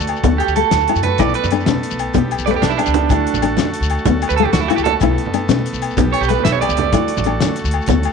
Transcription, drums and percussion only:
0.00 shekere
0.07 closed hi-hat, low agogo
0.16 shekere
0.24 kick, closed hi-hat, high conga, low conga, shekere
0.40 closed hi-hat, low agogo
0.48 shekere
0.56 closed hi-hat
0.71 snare, closed hi-hat, high conga, low conga, shekere
0.80 shekere
0.87 closed hi-hat, low conga, low agogo
0.96 shekere
1.03 closed hi-hat, low conga
1.18 kick, closed hi-hat, high conga, low conga, low agogo, shekere
1.28 low conga, shekere
1.34 closed hi-hat, low conga
1.44 low conga, shekere
1.51 closed hi-hat, low conga, low agogo, shekere
1.60 shekere
1.66 snare, closed hi-hat, high conga, low conga, shekere
1.76 low conga
1.83 closed hi-hat, shekere
1.91 low conga, shekere
1.99 closed hi-hat, low agogo, shekere
2.14 kick, closed hi-hat, high conga, low conga, shekere
2.31 closed hi-hat, low agogo
2.38 shekere
2.47 closed hi-hat
2.54 low conga
2.62 snare, closed hi-hat, high conga, low conga, shekere
2.70 shekere
2.79 closed hi-hat, low agogo
2.86 low conga, shekere
2.94 closed hi-hat, low conga
3.09 kick, closed hi-hat, high conga, low agogo, shekere
3.27 closed hi-hat
3.34 low conga, shekere
3.42 closed hi-hat, low agogo
3.50 low conga
3.57 snare, closed hi-hat, high conga, shekere
3.65 low conga
3.74 closed hi-hat, shekere
3.81 low conga, shekere
3.90 closed hi-hat, low agogo
3.98 shekere
4.06 kick, closed hi-hat, high conga, low conga, shekere
4.22 closed hi-hat, low agogo
4.30 shekere
4.37 closed hi-hat
4.46 low conga
4.53 snare, closed hi-hat, high conga, low conga, shekere
4.62 shekere
4.70 closed hi-hat, low conga, low agogo
4.78 shekere
4.85 closed hi-hat, low conga
5.01 kick, closed hi-hat, high conga, low agogo, shekere
5.18 closed hi-hat
5.26 low conga
5.33 closed hi-hat, low agogo, shekere
5.42 low conga
5.49 snare, closed hi-hat, high conga, shekere
5.59 low conga
5.66 closed hi-hat, shekere
5.74 low conga, shekere
5.82 closed hi-hat, low agogo
5.91 shekere
5.97 kick, closed hi-hat, high conga, low conga, shekere
6.14 closed hi-hat, low agogo
6.23 shekere
6.29 closed hi-hat
6.39 low conga
6.45 snare, closed hi-hat, high conga, low conga, shekere
6.54 shekere
6.62 closed hi-hat, low conga, low agogo
6.69 shekere
6.77 closed hi-hat, low conga
6.93 kick, closed hi-hat, high conga, low agogo, shekere
7.08 closed hi-hat
7.17 low conga, shekere
7.24 closed hi-hat, low agogo, shekere
7.33 low conga
7.40 snare, closed hi-hat, high conga, shekere
7.49 low conga
7.56 closed hi-hat, shekere
7.65 low conga, shekere
7.71 closed hi-hat, low agogo
7.82 shekere
7.86 kick, closed hi-hat, high conga, low conga, shekere
8.03 closed hi-hat, low agogo

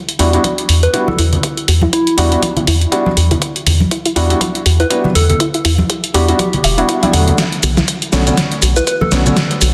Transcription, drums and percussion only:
0.09 closed hi-hat
0.19 open hi-hat
0.33 closed hi-hat
0.44 kick, closed hi-hat, high conga
0.58 closed hi-hat
0.69 open hi-hat
0.83 closed hi-hat
0.94 kick, closed hi-hat
1.08 high conga, low conga
1.19 open hi-hat
1.33 closed hi-hat, low conga
1.43 kick, closed hi-hat
1.57 closed hi-hat
1.68 open hi-hat
1.81 high conga
1.93 kick, closed hi-hat
2.07 closed hi-hat
2.18 open hi-hat
2.32 closed hi-hat
2.42 kick, closed hi-hat, high conga
2.56 closed hi-hat, low conga
2.67 open hi-hat
2.81 closed hi-hat
2.92 kick, closed hi-hat
3.06 high conga
3.17 open hi-hat
3.31 closed hi-hat, low conga
3.42 kick, closed hi-hat
3.56 closed hi-hat
3.67 open hi-hat, low conga
3.80 high conga
3.91 kick, closed hi-hat
4.06 closed hi-hat
4.16 open hi-hat
4.30 closed hi-hat
4.41 kick, closed hi-hat, high conga
4.55 closed hi-hat
4.66 open hi-hat
4.80 closed hi-hat
4.91 kick, closed hi-hat
5.04 high conga, low conga
5.15 open hi-hat
5.30 closed hi-hat, low conga
5.40 kick, closed hi-hat
5.54 closed hi-hat
5.65 open hi-hat
5.78 high conga
5.90 kick, closed hi-hat
6.04 closed hi-hat
6.14 open hi-hat
6.28 closed hi-hat
6.39 kick, closed hi-hat, high conga
6.53 closed hi-hat, low conga
6.64 open hi-hat
6.78 closed hi-hat
6.89 kick, closed hi-hat
7.03 closed hi-hat, high conga
7.13 open hi-hat
7.28 closed hi-hat, low conga
7.38 kick, snare, closed hi-hat, shaker
7.52 closed hi-hat
7.63 open hi-hat, low conga, shaker
7.77 snare, high conga, shaker
7.88 kick, closed hi-hat, shaker
8.02 closed hi-hat
8.13 snare, open hi-hat, shaker
8.27 closed hi-hat, shaker
8.37 kick, snare, closed hi-hat, high conga, shaker
8.52 closed hi-hat
8.62 open hi-hat, shaker
8.76 closed hi-hat, shaker
8.87 kick, closed hi-hat, shaker
9.01 high conga, low conga
9.12 snare, open hi-hat, shaker
9.26 closed hi-hat, low conga, shaker
9.37 kick, snare, closed hi-hat, shaker
9.51 closed hi-hat
9.61 open hi-hat, shaker

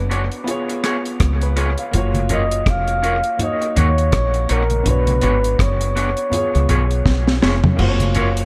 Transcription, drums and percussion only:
0.11 closed hi-hat
0.32 closed hi-hat
0.48 closed hi-hat
0.69 closed hi-hat
0.84 cross-stick, closed hi-hat
1.05 closed hi-hat
1.20 kick, cross-stick, closed hi-hat
1.41 closed hi-hat
1.57 closed hi-hat
1.78 closed hi-hat
1.93 closed hi-hat, low conga
2.14 closed hi-hat, high conga
2.29 closed hi-hat, low conga
2.51 closed hi-hat
2.66 kick, cross-stick, closed hi-hat, high conga
2.88 closed hi-hat
3.04 closed hi-hat
3.23 closed hi-hat
3.39 closed hi-hat, low conga
3.62 closed hi-hat
3.76 closed hi-hat, low conga
3.98 closed hi-hat
4.12 kick, cross-stick, closed hi-hat
4.34 closed hi-hat
4.49 closed hi-hat
4.70 closed hi-hat, high conga
4.86 closed hi-hat, low conga
5.07 closed hi-hat, high conga
5.21 closed hi-hat, low conga
5.44 closed hi-hat
5.59 kick, cross-stick, closed hi-hat, high conga
5.81 closed hi-hat
5.97 closed hi-hat
6.17 closed hi-hat
6.32 closed hi-hat, low conga
6.55 closed hi-hat
6.69 closed hi-hat, low conga
6.91 closed hi-hat
7.06 kick, snare
7.28 snare
7.42 snare
7.64 floor tom, high conga
7.79 crash, low conga
8.00 closed hi-hat, high conga
8.15 closed hi-hat, low conga
8.37 closed hi-hat

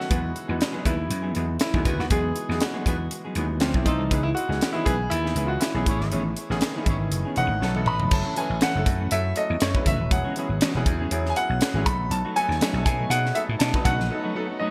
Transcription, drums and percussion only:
0.01 snare
0.11 kick, closed hi-hat
0.36 closed hi-hat
0.61 snare, closed hi-hat
0.85 kick, closed hi-hat
1.11 closed hi-hat
1.35 closed hi-hat
1.60 snare, closed hi-hat
1.74 kick
1.85 kick, closed hi-hat
2.00 snare
2.10 kick, closed hi-hat
2.36 closed hi-hat
2.51 snare
2.61 snare, closed hi-hat
2.86 kick, closed hi-hat
3.11 closed hi-hat
3.35 closed hi-hat
3.60 snare, closed hi-hat
3.74 kick
3.86 kick, closed hi-hat
4.11 kick, closed hi-hat
4.37 closed hi-hat
4.51 snare
4.61 snare, closed hi-hat
4.86 kick, closed hi-hat
5.11 closed hi-hat
5.26 snare
5.36 closed hi-hat
5.61 snare, closed hi-hat
5.86 kick, closed hi-hat
6.01 snare
6.12 closed hi-hat
6.36 closed hi-hat
6.51 snare
6.61 snare, closed hi-hat
6.86 kick, closed hi-hat
7.12 closed hi-hat
7.36 closed hi-hat
7.62 snare
7.75 high tom
7.86 mid tom
8.00 floor tom
8.11 kick, crash
8.36 closed hi-hat
8.61 snare, closed hi-hat
8.86 kick, closed hi-hat
9.11 closed hi-hat
9.36 closed hi-hat
9.60 snare, closed hi-hat
9.75 kick
9.86 kick, closed hi-hat
10.11 kick, closed hi-hat
10.36 closed hi-hat
10.61 snare, closed hi-hat
10.86 kick, closed hi-hat
11.11 closed hi-hat
11.26 snare
11.36 closed hi-hat
11.61 snare, closed hi-hat
11.86 kick, closed hi-hat
12.11 closed hi-hat
12.36 closed hi-hat
12.51 snare
12.61 snare, closed hi-hat
12.86 kick, closed hi-hat
13.11 closed hi-hat
13.26 snare
13.35 closed hi-hat
13.60 snare, closed hi-hat
13.74 kick
13.85 kick, closed hi-hat
14.00 snare

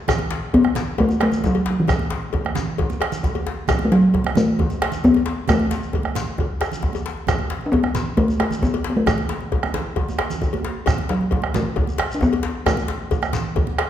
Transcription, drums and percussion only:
0.08 bombo rim, bombo low, cowbell, djembe slap, djembe tone, low conga, djembe bass, shekere
0.19 high conga
0.31 bombo rim, djembe slap
0.53 bombo low, cowbell, djembe tone, djembe bass
0.64 bombo rim, high conga
0.75 djembe slap, high conga, low conga, shekere
0.98 bombo low, cowbell, djembe tone, djembe bass
1.09 high conga, shekere
1.20 bombo rim, cowbell, djembe slap
1.32 low conga, shekere
1.44 bombo low, djembe tone, djembe bass, shekere
1.54 cowbell, high conga
1.66 djembe slap
1.88 bombo rim, bombo low, cowbell, djembe slap, djembe tone, low conga, djembe bass, shekere
1.99 high conga
2.10 bombo rim, djembe slap
2.23 high conga
2.33 bombo low, cowbell, djembe tone, djembe bass
2.45 bombo rim, high conga
2.55 djembe slap, high conga, low conga, shekere
2.78 bombo low, cowbell, djembe tone, djembe bass
2.90 high conga, shekere
3.01 bombo rim, cowbell, djembe slap
3.12 low conga, shekere
3.23 bombo low, djembe tone, djembe bass, shekere
3.35 cowbell, high conga
3.47 djembe slap
3.68 bombo rim, bombo low, cowbell, djembe slap, djembe tone, low conga, djembe bass, shekere
3.79 high conga
3.92 bombo rim, djembe slap
4.02 high conga
4.14 bombo low, cowbell, djembe tone, djembe bass
4.24 bombo rim, high conga
4.35 high conga, low conga, shekere
4.59 bombo low, cowbell, djembe tone, djembe bass
4.70 high conga, shekere
4.82 bombo rim, cowbell, djembe slap
4.92 low conga, shekere
5.04 bombo low, djembe tone, djembe bass, shekere
5.14 cowbell, high conga
5.26 djembe slap
5.48 bombo rim, bombo low, cowbell, high conga, djembe tone, low conga, djembe bass, shekere
5.59 high conga
5.71 djembe slap, shekere
5.82 high conga, shekere
5.93 bombo low, cowbell, djembe slap, high conga, djembe tone, djembe bass
6.03 bombo rim, high conga
6.15 bombo rim, djembe slap, low conga, shekere
6.27 high conga
6.38 bombo rim, bombo low, cowbell, high conga, djembe tone, djembe bass
6.61 bombo rim, cowbell, djembe slap, high conga, shekere
6.72 low conga, shekere
6.83 bombo low, djembe tone, high conga, djembe bass
6.93 cowbell, high conga, shekere
7.06 djembe slap, shekere
7.17 djembe slap
7.27 bombo rim, bombo low, cowbell, djembe slap, djembe tone, low conga, djembe bass, shekere
7.39 high conga
7.50 bombo rim, djembe slap
7.61 high conga
7.73 bombo low, cowbell, djembe tone, djembe bass
7.83 bombo rim, high conga
7.95 djembe slap, high conga, low conga, shekere
8.17 bombo low, cowbell, djembe tone, djembe bass
8.28 high conga, shekere
8.40 bombo rim, cowbell, djembe slap
8.51 low conga, shekere
8.62 bombo low, djembe tone, djembe bass, shekere
8.74 cowbell, high conga
8.84 djembe slap
9.06 bombo rim, bombo low, cowbell, djembe slap, djembe tone, djembe bass, low conga, shekere
9.18 high conga
9.29 bombo rim, djembe slap
9.40 high conga
9.52 bombo low, cowbell, djembe tone, djembe bass
9.63 bombo rim, high conga
9.74 djembe slap, high conga, low conga
9.96 bombo low, cowbell, djembe tone, djembe bass
10.09 high conga, shekere
10.18 bombo rim, cowbell, djembe slap
10.30 low conga, shekere
10.42 bombo low, djembe tone, djembe bass, shekere
10.53 cowbell, high conga
10.64 djembe slap
10.86 bombo rim, bombo low, cowbell, djembe slap, djembe tone, djembe bass, low conga, shekere
10.98 high conga
11.09 bombo rim, djembe slap
11.21 high conga
11.31 bombo low, cowbell, djembe tone, djembe bass
11.42 bombo rim, high conga
11.54 djembe slap, high conga, low conga, shekere
11.76 bombo low, cowbell, djembe tone, djembe bass
11.87 high conga, shekere
11.98 bombo rim, cowbell, djembe slap
12.12 shekere
12.21 bombo low, djembe tone, djembe bass, shekere
12.33 cowbell, high conga
12.43 djembe slap
12.66 bombo rim, bombo low, cowbell, djembe tone, djembe bass, low conga, shekere
12.77 bombo rim, high conga, shekere
12.88 djembe slap
13.11 bombo low, cowbell, djembe slap, high conga, djembe tone, djembe bass, shekere
13.22 bombo rim, high conga, shekere
13.33 djembe slap, low conga, shekere
13.44 high conga
13.56 bombo low, cowbell, djembe tone, djembe bass
13.67 djembe slap, high conga
13.78 bombo rim, cowbell, djembe slap

